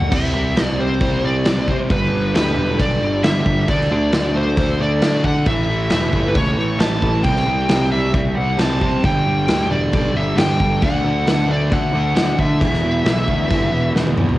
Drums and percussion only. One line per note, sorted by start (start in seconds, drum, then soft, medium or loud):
0.00 floor tom medium
0.12 kick loud
0.12 crash loud
0.12 crash medium
0.24 snare soft
0.57 snare loud
0.57 crash medium
1.01 kick loud
1.01 crash medium
1.45 snare loud
1.45 crash medium
1.68 kick medium
1.90 kick loud
1.90 crash medium
2.35 snare loud
2.35 crash medium
2.80 kick medium
2.80 crash medium
3.24 snare loud
3.24 crash medium
3.46 kick medium
3.68 kick loud
3.68 crash medium
3.81 snare soft
4.12 snare loud
4.12 crash medium
4.57 kick loud
4.57 crash medium
5.02 snare loud
5.02 crash medium
5.24 kick medium
5.46 kick loud
5.46 crash medium
5.90 snare loud
5.90 crash medium
6.13 kick medium
6.35 kick loud
6.35 crash medium
6.80 snare loud
6.80 crash medium
7.02 kick medium
7.24 kick loud
7.24 crash medium
7.36 snare soft
7.69 snare loud
7.69 crash medium
8.14 kick loud
8.14 crash medium
8.59 snare loud
8.59 crash medium
8.81 kick medium
9.04 kick loud
9.04 crash medium
9.48 snare loud
9.48 crash medium
9.93 kick loud
9.93 crash medium
10.38 snare loud
10.38 crash medium
10.60 kick medium
10.82 kick loud
10.82 crash medium
11.27 snare loud
11.27 crash medium
11.72 kick loud
11.72 crash medium
12.16 snare loud
12.16 crash medium
12.39 kick medium
12.61 kick medium
12.61 crash medium
12.74 snare soft
13.06 snare loud
13.06 crash medium
13.28 kick medium
13.51 kick loud
13.51 crash medium
13.96 snare medium
14.07 high tom medium
14.17 mid tom medium
14.29 floor tom medium